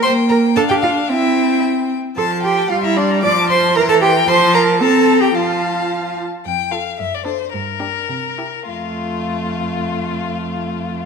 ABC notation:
X:1
M:2/4
L:1/16
Q:1/4=111
K:F
V:1 name="Violin"
g4 f4 | g6 z2 | c' a c' a c' b c' b | c' a c' a c' b c' b |
a4 b4 | a6 z2 | g2 f2 e d c2 | B8 |
F8- | F8 |]
V:2 name="Violin"
c'2 b2 a g f2 | e4 z4 | a2 g2 f e d2 | d'2 c'2 b a g2 |
c'2 b2 a3 g | f6 z2 | z2 A2 z2 A2 | z2 G2 z2 G2 |
F8- | F8 |]
V:3 name="Cello"
c2 B2 A G F2 | E4 z4 | A2 G2 F E D2 | d2 c2 B A G2 |
c2 B2 A3 G | F6 z2 | F,,4 ^F,,4 | G,,4 C,4 |
F,,8- | F,,8 |]
V:4 name="Viola"
B,4 D4 | C6 z2 | F,4 G,4 | F,4 E,4 |
F,4 C4 | F,6 z2 | z2 F2 z2 D2 | z2 D2 z2 E2 |
A,8- | A,8 |]